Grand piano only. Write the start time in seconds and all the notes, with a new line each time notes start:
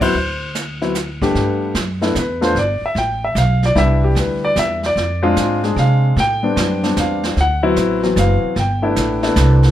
0.01 F#3 B3 C4 E4 C5
0.81 F#3 B3 C4 E4
1.22 G2 A3 B3 D4 G4
2.01 A3 B3 D4 E4
2.18 B4
2.41 A3 B3 D4 F4 C5
2.59 D5
2.86 E5
2.98 G5
3.24 E5
3.38 F5
3.66 D5
3.76 G3 B3 D4 E4 E5
4.04 G4
4.19 B4
4.45 D5
4.59 E5
4.86 D5
5.23 G#3 C4 D4 F4
5.64 G#3 C4 D4 G#4
5.79 F5
6.20 G5
6.43 G3 B3 C4 D4
6.83 G3 B3 C4 D4
7.00 F5
7.41 F#5
7.63 F#3 B3 C4 E4
8.03 E3 F#3 B3 C4
8.19 F5
8.60 G5
8.82 A3 B3 D4 E4
9.23 A3 B3 D4 E4